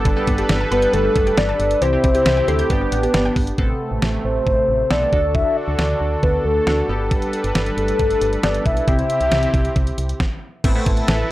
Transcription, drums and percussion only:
0.05 kick, closed hi-hat
0.27 kick, closed hi-hat
0.38 closed hi-hat
0.49 snare, closed hi-hat
0.72 closed hi-hat
0.82 closed hi-hat
0.93 closed hi-hat
1.16 kick, closed hi-hat
1.27 closed hi-hat
1.37 snare, closed hi-hat
1.60 closed hi-hat
1.71 closed hi-hat
1.82 closed hi-hat
2.04 kick, closed hi-hat
2.15 closed hi-hat
2.26 snare, closed hi-hat
2.48 closed hi-hat
2.59 closed hi-hat
2.70 kick, closed hi-hat
2.92 closed hi-hat
3.03 closed hi-hat
3.14 snare, closed hi-hat
3.36 kick, open hi-hat
3.47 closed hi-hat
3.58 kick
4.02 snare
4.47 kick
4.91 snare
5.13 kick
5.35 kick
5.79 snare
6.23 kick
6.67 snare
7.11 kick, closed hi-hat
7.22 closed hi-hat
7.33 closed hi-hat
7.44 closed hi-hat
7.55 snare, closed hi-hat
7.66 closed hi-hat
7.78 closed hi-hat
7.88 closed hi-hat
7.99 kick, closed hi-hat
8.11 closed hi-hat
8.21 closed hi-hat
8.33 closed hi-hat
8.43 snare, closed hi-hat
8.54 closed hi-hat
8.66 kick, closed hi-hat
8.77 closed hi-hat
8.88 kick, closed hi-hat
8.99 closed hi-hat
9.10 closed hi-hat
9.21 closed hi-hat
9.32 snare, closed hi-hat
9.43 closed hi-hat
9.54 kick, closed hi-hat
9.65 closed hi-hat
9.76 kick, closed hi-hat
9.87 closed hi-hat
9.98 closed hi-hat
10.09 closed hi-hat
10.20 kick, snare
10.64 kick, closed hi-hat, crash
10.86 kick, closed hi-hat
10.97 closed hi-hat
11.08 snare, closed hi-hat

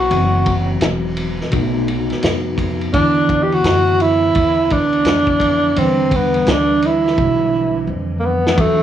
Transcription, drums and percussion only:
0.11 ride
0.46 kick, ride
0.81 snare, hi-hat pedal, ride
1.17 ride
1.41 snare
1.52 kick, ride
1.88 ride
2.10 snare, ride
2.22 snare, hi-hat pedal, ride
2.58 kick, ride
2.81 ride
2.94 kick, ride
3.29 kick, ride
3.52 ride
3.64 snare, hi-hat pedal, ride
4.00 ride
4.35 kick, ride
4.70 kick, ride
4.93 ride
5.05 snare, hi-hat pedal, ride
5.27 kick
5.40 kick, ride
5.76 ride
6.11 kick, ride
6.34 ride
6.47 snare, hi-hat pedal, ride
6.82 ride
7.07 snare
7.18 kick
8.47 snare
8.58 kick, ride

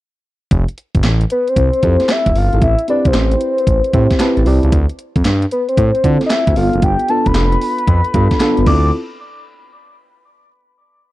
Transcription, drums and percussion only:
0.51 kick, closed hi-hat
0.68 closed hi-hat
0.78 closed hi-hat
0.95 kick, closed hi-hat
1.03 snare, clap, closed hi-hat
1.21 closed hi-hat
1.30 closed hi-hat
1.48 closed hi-hat
1.56 kick, closed hi-hat
1.73 closed hi-hat
1.83 kick, closed hi-hat
2.00 snare, closed hi-hat
2.08 snare, clap, closed hi-hat
2.26 kick, closed hi-hat
2.35 open hi-hat
2.53 closed hi-hat
2.62 kick, closed hi-hat
2.79 closed hi-hat
2.88 closed hi-hat
3.05 kick, closed hi-hat
3.14 snare, clap, closed hi-hat
3.32 closed hi-hat
3.41 closed hi-hat
3.58 closed hi-hat
3.67 kick, closed hi-hat
3.84 closed hi-hat
3.93 kick, closed hi-hat
4.11 kick, snare, closed hi-hat
4.19 snare, clap, closed hi-hat
4.37 closed hi-hat
4.46 open hi-hat
4.63 closed hi-hat
4.72 kick, closed hi-hat
4.89 closed hi-hat
4.99 closed hi-hat
5.16 kick, closed hi-hat
5.25 snare, clap, closed hi-hat
5.42 closed hi-hat
5.51 closed hi-hat
5.69 closed hi-hat
5.77 kick, closed hi-hat
5.95 closed hi-hat
6.04 kick, closed hi-hat
6.21 snare, closed hi-hat
6.30 snare, clap, closed hi-hat
6.47 kick, closed hi-hat
6.56 open hi-hat
6.73 closed hi-hat
6.82 kick, closed hi-hat
6.99 closed hi-hat
7.08 closed hi-hat
7.26 kick, closed hi-hat
7.35 snare, clap, closed hi-hat
7.52 closed hi-hat
7.61 open hi-hat
7.78 closed hi-hat
7.87 kick, closed hi-hat
8.04 closed hi-hat
8.14 kick, closed hi-hat
8.31 kick, snare, closed hi-hat
8.40 snare, clap, closed hi-hat
8.57 closed hi-hat
8.66 kick, crash

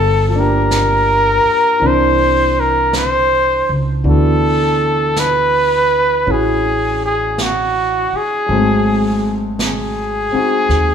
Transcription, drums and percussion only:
0.71 brush sweep, snare, hi-hat pedal
1.83 brush sweep
2.93 brush sweep, snare, hi-hat pedal
4.05 brush sweep
5.16 brush sweep, snare, hi-hat pedal
6.27 brush sweep
7.38 brush sweep, snare, hi-hat pedal
8.49 brush sweep
9.59 brush sweep, snare, hi-hat pedal
10.70 brush sweep, snare

